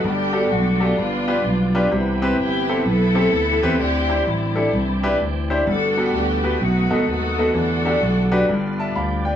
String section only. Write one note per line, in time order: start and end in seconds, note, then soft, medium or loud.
0.05 0.81 B3 medium
0.05 0.81 D4 medium
0.05 0.49 G4 medium
0.51 0.81 F#4 medium
0.82 1.72 B3 medium
0.82 1.71 D4 medium
0.82 1.76 F4 medium
2.39 3.29 B3 medium
2.39 2.85 E4 medium
2.39 2.83 G4 medium
2.86 3.76 E4 medium
2.86 3.76 A4 loud
3.80 4.26 C4 medium
3.80 4.27 E4 medium
3.80 4.27 G4 loud
4.27 5.17 G3 medium
4.27 5.17 C4 soft
4.27 5.21 E4 medium
5.67 6.13 D4 medium
5.67 6.57 F#4 medium
5.67 6.11 A4 medium
6.14 6.58 B3 medium
6.14 6.58 D4 medium
6.14 6.61 G4 medium
6.62 7.51 A3 medium
6.62 7.07 D#4 medium
6.62 7.07 F#4 medium
7.08 7.51 D#4 medium
7.08 7.52 F#4 medium
7.08 7.52 A4 medium
7.53 8.44 D4 medium
7.53 8.44 F#4 medium
7.53 8.44 A4 medium